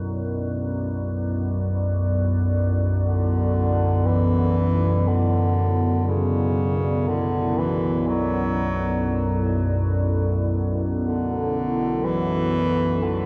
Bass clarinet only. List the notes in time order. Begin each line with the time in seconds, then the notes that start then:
3.04 D3
4.06 E3
5.08 D3
6.08 C#3
7.08 D3
7.58 E3
8.08 F#3
11.05 D3
12.04 E3
13.03 D3